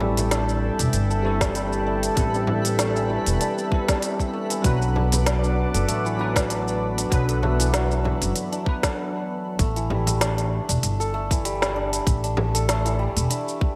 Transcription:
Already playing: A1 E3 G3 A3 B3 C4 D4 E4 A4 B4 E5 G5 A5
0.00 G3, frame drum
0.17 closed hi-hat, frame drum, shaker
0.31 D4, snare, closed hi-hat, shaker
0.49 shaker
0.79 E1 D4, closed hi-hat, shaker
0.93 G1, closed hi-hat, shaker
1.10 A4, shaker
1.22 G3 A3 C4 E4
1.26 A4
1.41 E3, kick, snare, closed hi-hat, shaker
1.55 G3, closed hi-hat, shaker
1.73 shaker
1.87 D4
2.03 closed hi-hat, shaker
2.15 A1 G3 C4 E4, kick, closed hi-hat, shaker
2.19 A4
2.34 D4, shaker
2.47 frame drum
2.65 A4, closed hi-hat, shaker
2.79 A3, snare, closed hi-hat, shaker
2.96 E3, shaker
3.10 G3
3.26 E1, closed hi-hat, shaker
3.41 D4, closed hi-hat, shaker
3.58 shaker
3.70 G3 C4 E4, kick
3.74 A4
3.88 D4, kick, snare, closed hi-hat, shaker
4.02 closed hi-hat, shaker
4.19 A4, kick, shaker
4.33 A3
4.50 E3, closed hi-hat, shaker
4.62 B1 F#3 B3 D4 B4 D5 F#5 D6, kick, closed hi-hat, shaker
4.66 B4
4.82 shaker
4.95 D4, frame drum
5.12 closed hi-hat, frame drum, shaker
5.26 snare, closed hi-hat, shaker
5.43 D4, shaker
5.74 F#1 A4, closed hi-hat, shaker
5.88 A1 A3, closed hi-hat, shaker
6.05 E3, shaker
6.17 F#3 B3 D4 B4
6.36 kick, snare, closed hi-hat, shaker
6.50 D4, closed hi-hat, shaker
6.68 shaker
6.98 D4, closed hi-hat, shaker
7.10 B1 F#3 B3 D4 B4 E5, kick, closed hi-hat, shaker
7.28 A4, closed hi-hat, shaker
7.43 A3, frame drum
7.59 E3, closed hi-hat, shaker
7.73 F#3, snare, closed hi-hat, shaker
7.91 shaker
8.04 D4, frame drum
8.22 F#1, closed hi-hat, shaker
8.36 closed hi-hat, shaker
8.52 D4, closed hi-hat, shaker
8.65 F#3 B3 D4 B4, kick
8.83 A4, kick, snare, closed hi-hat, shaker
9.59 A1 A3, kick, closed hi-hat, shaker
9.76 E3, closed hi-hat, shaker
9.90 G3, frame drum
10.07 closed hi-hat, frame drum, shaker
10.21 D4, snare, closed hi-hat, shaker
10.38 closed hi-hat, shaker
10.69 E1 D4, closed hi-hat, shaker
10.83 G1, closed hi-hat, shaker
11.00 A4, shaker
11.14 A3
11.31 E3, kick, closed hi-hat, shaker
11.45 G3, closed hi-hat, shaker
11.62 snare, shaker
11.76 D4
11.93 closed hi-hat, shaker
12.07 A1, kick, closed hi-hat, shaker
12.24 D4, closed hi-hat, shaker
12.37 frame drum
12.55 A4, closed hi-hat, shaker
12.68 A3, snare, closed hi-hat, shaker
12.85 E3, closed hi-hat, shaker
12.99 G3
13.17 E1, closed hi-hat, shaker
13.30 D4, closed hi-hat, shaker
13.48 shaker
13.61 kick

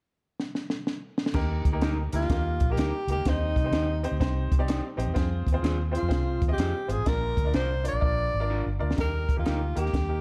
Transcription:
0.40 snare
0.55 snare
0.70 snare
0.87 snare
1.18 snare
1.26 snare
1.34 D#2 A#3 D#4 G4 A#4, kick, snare, crash
1.65 D2, kick, closed hi-hat
1.72 A#3 D#4 G4 A#4
1.81 D#4 G4 A#4, snare, closed hi-hat
2.12 D2 A#3 D#4 F4 G4 A#4, closed hi-hat
2.21 snare
2.30 D#2 A#3 D#4 G4 A#4, kick, snare, closed hi-hat
2.60 A#1, kick, closed hi-hat
2.70 A#3 D#4 G4 A#4
2.77 D2 D#4 G4 A#4, snare, closed hi-hat
3.07 C#2 A#3 D#4 G4 A#4, closed hi-hat
3.16 D2
3.25 D#2 D#3 C4 D#4 G4 C5, kick, snare, closed hi-hat
3.56 C2, kick, closed hi-hat
3.64 C4 D#4 G4 C5
3.71 D#2 D#4 G4 C5, snare, closed hi-hat
4.03 C4 D#4 G4 C5, closed hi-hat
4.11 D2
4.20 C2 C4 D#4 G4 C5, kick, snare, closed hi-hat
4.51 C2, kick, closed hi-hat
4.59 C4 D#4 G4 D5
4.68 D#4 G4 C5, snare, closed hi-hat
4.97 A#1 C4 D#4 G4 C5, closed hi-hat
5.07 E2
5.14 F2 C4 F4 G#4 C5, kick, snare, closed hi-hat
5.46 D#2, kick, closed hi-hat
5.52 C4 F4 G#4 C5
5.63 D#2 F4 G#4 C5, snare, closed hi-hat
5.91 C4 F4 G#4 C5, closed hi-hat
5.96 F4
6.03 F2
6.08 C2 C4 F4 G#4 C5, kick, snare, closed hi-hat
6.41 D#2, kick, closed hi-hat
6.48 C4 F4 G#4 D#5
6.53 G4
6.58 F2 F4 G#4 C5, snare, closed hi-hat
6.88 G#1 C4 F4 G#4 C5, closed hi-hat
6.98 A1
7.05 A#1 A#2 D4 F4 A#4 D5, kick, snare, closed hi-hat
7.37 D2, kick, closed hi-hat
7.45 D4 F4 A#4 D5
7.54 C2 D4 F4 A#4 C5, snare, closed hi-hat
7.84 D4 F4 A#4 D5, closed hi-hat
7.88 D5
7.93 A#1
8.00 A#1 D4 F4 A#4 D5, kick
8.34 G#1
8.40 D4 F4 A#4 D5
8.50 D4 F4 A#4
8.66 G1
8.79 D2 D4 F4 A#4 D5
8.91 snare
8.96 D#2 D#3 A#3 D#4 G4 A#4, kick, snare, closed hi-hat
9.00 A#4
9.29 kick, closed hi-hat
9.36 D#2 A#3 D#4 F4 G4 A#4
9.46 D2 D#4 G4 A#4, snare, closed hi-hat
9.75 D#2 A#3 D#4 G4 A#4, closed hi-hat
9.86 snare
9.93 D#2, kick, snare, closed hi-hat
10.09 A#3 D#4 G4 A#4

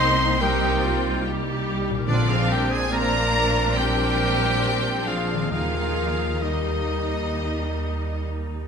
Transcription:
Already playing: C2 C3 A#3 C4 D#4 A#4 C5 D#5 C6
0.41 G3 C4 D#4 G4 A#4 G5
0.82 F4
1.24 G3 G4
1.90 A#2
1.94 C4
1.99 A#4
2.03 A#1 D6
2.07 A#2 D3 A#3 C4 D4 F4 D5
2.28 F3 F4 G#4 F5
2.49 G3 G4 A#4 G5
2.70 G#3 G#4 C5 G#5
2.91 A#3 C4 D4 A#4 D5 A#5
3.77 G3 G4 A#4 G5
5.06 F3 F4 G#4 F5
5.34 D#3
5.38 A#3
5.43 G5
5.47 D#5
5.52 D#2 D#3 F3 A#3 D#4 F4 G#4 A#4 F5
6.42 D#3 G3 D#4 G4 D#5

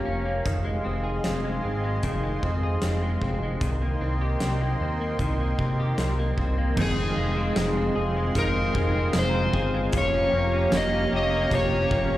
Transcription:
Already playing: A#3 F4 G4 C#5 F5 A#5
0.05 F1 C#4
0.25 A#3
0.45 F1 D#3 G#4 D#5 C6, kick, closed hi-hat
0.64 G#3
0.84 F1 C4
1.04 G#4
1.24 F1 C4, snare, closed hi-hat
1.44 G#3
1.64 G#1 C4
1.84 G#3
2.03 F1 D#3, kick, closed hi-hat
2.23 G#3
2.43 F2 C4, kick
2.63 G#4
2.82 F1 C4, snare, closed hi-hat
3.03 G#3
3.22 F1 C4, kick
3.43 G#3
3.60 C2 D#3 A#4 D#5 G5 C6, kick, closed hi-hat
3.82 A#3
4.01 C2 C4
4.21 G4
4.40 C2 C4, snare, closed hi-hat
4.61 A#3
4.80 D#2 C4
5.00 A#3
5.19 C2 D#3, kick, closed hi-hat
5.40 A#3
5.59 C3 C4, kick
5.80 G4
5.98 C2 C4, snare, closed hi-hat
6.19 A#3
6.38 C2 C4, kick
6.58 A#3
6.76 F1 F2 C3 D#3 G#3 C4 F4 G#4 D#5 F5 C6, kick, crash
6.82 G#4
6.97 C4
7.15 F1 G#3 C4 F4
7.21 D#3
7.37 C4
7.41 C6
7.46 D#6
7.56 F1 F2 C3 D#3 G#3 C4 F4, snare, closed hi-hat, tambourine
7.76 C4
7.95 F1 G#3 C4 F4 G#4
7.99 D#3
8.16 G#3
8.34 F1 D#3 G#3 C4, kick, closed hi-hat
8.39 F4 A#4
8.55 C4
8.74 F1 G#3 C4 F4, kick
8.79 D#3
8.94 C4
9.13 F1 F2 C3 D#3 G#3 C4 F4, snare, closed hi-hat, tambourine
9.19 C5
9.23 F5
9.29 A#5
9.34 C4 C6
9.52 G1 G#3 C4 F4 G#4, kick
9.57 D#3
9.74 G#3
9.92 F1 F3 A#3 C#4 G4 C#5 A#5, kick, closed hi-hat
9.98 C#5
10.14 C#4
10.29 F1 G4 G5
10.34 A#3 C#4
10.53 C#4
10.71 F1 F3 A#3 C#4 G4, snare, closed hi-hat, tambourine
10.77 D#5
10.93 C#4
11.10 F1 C#4 G4
11.16 D#5
11.33 A#3
11.50 F1 F3 A#3 C#4, kick, closed hi-hat
11.55 G4 C#5
11.73 C#4
11.90 F1 A#3 C#4 G4, kick
11.94 A#3
12.11 C#4

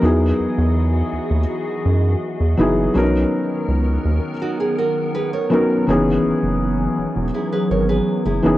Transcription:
Already playing: D#5
0.01 E2 E3 F#3 B3 D#4 E4 F#4 G#4
0.40 E2
0.58 E2
1.13 D#2
1.30 D#2
1.86 F#2
2.40 E2
2.57 F#1 F#3 B3 D#4 E4 G#4
2.94 B1 D#3 F#3 B3 C#4 D4 A#4
3.03 D#4
3.68 C#2
4.05 D#2
4.42 D#4 F#4
4.60 G#4
4.79 F#4 A#4
5.15 G#4 B4
5.33 A#4 C#5
5.50 F#3 B3 C#4 D#4 A#4
5.87 F#1 E3 F#3 B3 C#4 D#4 G#4
6.25 F#1
6.43 F#1
6.98 E1
7.16 E1
7.34 E4 G#4
7.52 G#4 B4
7.71 G#1 A#4 C#5
7.89 G#4 B4
8.25 F#1 E4 G#4
8.43 F#1 E3 B3 C#4 D#4 G#4

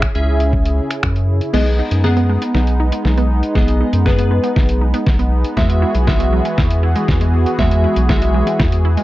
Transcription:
Already playing: C#3 C#4 E4 G#4
0.02 finger snap, kick
0.15 C#2 C#4 G#4 E5, closed hi-hat
0.40 closed hi-hat
0.53 kick
0.65 closed hi-hat
0.91 finger snap, closed hi-hat
1.03 F#2, finger snap, kick
1.16 closed hi-hat
1.41 closed hi-hat
1.53 B1 G#3 B3 D#4 G#4 D#5, snare, crash
1.66 closed hi-hat
1.79 D#4
1.91 F#2, closed hi-hat
2.04 B3 D#4 G#4 F#5, snare
2.17 B3, closed hi-hat
2.29 G#3
2.42 B3, closed hi-hat
2.54 B1 D#4, snare
2.67 closed hi-hat
2.80 D#4
2.92 B3, closed hi-hat
3.05 B1, snare
3.18 B3, closed hi-hat
3.43 closed hi-hat
3.55 B1 G#3 B3 G#4 D#5, kick, snare
3.68 closed hi-hat
3.81 D#4
3.93 F#2, closed hi-hat
4.06 B3 D#4 G#4 B4, kick, snare
4.18 B3, closed hi-hat
4.31 G#3
4.44 B3, closed hi-hat
4.56 B1 D#4, kick, snare
4.69 closed hi-hat
4.81 D#4
4.94 B3, closed hi-hat
5.07 B1, kick, snare
5.19 B3, closed hi-hat
5.44 closed hi-hat
5.57 E2 E3 F#3 G#3 F#4 G#4 E5, kick, snare
5.70 closed hi-hat
5.82 E4
5.95 B1, closed hi-hat
6.07 G#3 E4 F#4 E5, kick, snare
6.20 G#3, closed hi-hat
6.33 F#3
6.45 G#3, closed hi-hat
6.58 E2 E4, kick, snare
6.71 closed hi-hat
6.83 E4
6.96 G#3, closed hi-hat
7.08 E2, kick, snare
7.21 G#3, closed hi-hat
7.46 closed hi-hat
7.58 E2 F#3 G#3 F#4 E5, kick, snare
7.71 closed hi-hat
7.84 E4
7.96 B1, closed hi-hat
8.09 G#3 E4 F#4 E5, kick, snare
8.22 G#3, closed hi-hat
8.34 F#3
8.47 G#3, closed hi-hat
8.59 E2 E4, kick, snare
8.72 closed hi-hat
8.85 E4
8.97 G#3, closed hi-hat

